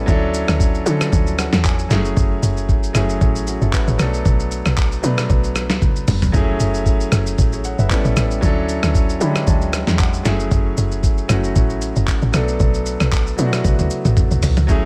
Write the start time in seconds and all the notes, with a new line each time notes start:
0.06 D2 F#3 C#4 D4 E4, kick, shaker
0.10 A4
0.34 shaker
0.48 D2, cross-stick, shaker
0.60 kick, shaker
0.75 shaker
0.84 D3 F3 C#4 D4 E4 A4, shaker
0.91 F#3
1.01 cross-stick, shaker
1.12 D2, kick, shaker
1.27 shaker
1.39 F#5, cross-stick, shaker
1.53 E2, snare, shaker
1.65 G#5, kick, clap, shaker
1.79 shaker
1.89 F#1 F#3 A3 C#4 E4 G#4, snare, shaker
2.05 shaker
2.17 F#1, kick, shaker
2.43 F#1, shaker
2.57 shaker
2.69 kick, shaker
2.83 shaker
2.93 F#1 F#3 A3 C#4 E4 G#4, cross-stick, shaker
3.09 shaker
3.21 A1, kick, shaker
3.36 shaker
3.47 C#4 F#4, shaker
3.62 F#1 E4 A4, shaker
3.73 F#4 B4, kick, clap, shaker
3.88 A1 G#4 C#5, shaker
3.98 B1 F#3 A3 B3 D4 A4, cross-stick, shaker
4.14 shaker
4.25 B1, kick, shaker
4.40 shaker
4.51 shaker
4.66 B1, cross-stick, shaker
4.77 kick, clap, shaker
4.92 shaker
5.02 B2 F#3 A3 B3 D4 B4, shaker
5.18 cross-stick, shaker
5.30 B1, kick, shaker
5.44 shaker
5.56 cross-stick, shaker
5.70 C#2, snare, shaker
5.82 kick, high tom, shaker
5.96 shaker
6.08 F#1, mid tom, open hi-hat, shaker
6.22 floor tom, shaker
6.32 F#1 F#3 A3 C#4 E4 G#4, kick, shaker
6.60 F#1, shaker
6.74 shaker
6.86 kick, shaker
7.01 shaker
7.12 F#1, cross-stick, shaker
7.26 shaker
7.38 A1, kick, shaker
7.53 G#4 C#5, shaker
7.64 C#5 F#5, shaker
7.79 F#1 B4 E5, shaker
7.89 G3 B3 C#4 E4 A4, kick, clap, shaker
8.05 A1, shaker
8.16 A1, cross-stick, shaker
8.31 shaker
8.41 D2 F#3 C#4 D4 E4 A4, kick, shaker
8.69 shaker
8.83 D2, cross-stick, shaker
8.95 kick, shaker
9.09 shaker
9.19 D3 F#3 C#4 D4 E4 G4 B5, shaker
9.29 G#3
9.36 cross-stick, shaker
9.47 D2 A5, kick, shaker
9.62 shaker
9.73 cross-stick, shaker
9.87 E2, snare, shaker
9.99 F#5, kick, clap, shaker
10.13 shaker
10.23 F#1 F#3 A3 C#4 E4 G#4, snare, shaker
10.40 shaker
10.51 F#1, kick, shaker
10.77 F#1, shaker
10.92 shaker
11.03 kick, shaker
11.18 shaker
11.28 F#1 F#3 A3 C#4 E4 F#4, cross-stick, shaker
11.44 shaker
11.56 A1, kick, shaker
11.70 shaker
11.82 shaker
11.96 F#1, shaker
12.08 kick, clap, shaker
12.22 A1, shaker
12.32 B1 F#3 A3 B3 D4 A4, cross-stick, shaker
12.48 shaker
12.60 B1, kick, shaker
12.74 shaker
12.86 shaker
13.00 B1, cross-stick, shaker
13.12 kick, clap, shaker
13.27 shaker
13.37 B2 F#3 A3 B3 D4 E4, shaker
13.47 F#4
13.53 cross-stick, shaker
13.64 B1, kick, high tom, shaker
13.79 D2, high tom, shaker
13.90 shaker
14.05 A1, mid tom, shaker
14.17 kick, mid tom, shaker
14.31 B1, shaker
14.42 B1, floor tom, open hi-hat, shaker
14.57 C#2, floor tom, shaker
14.67 F#3 A3 C#4 E4 G#4, kick, shaker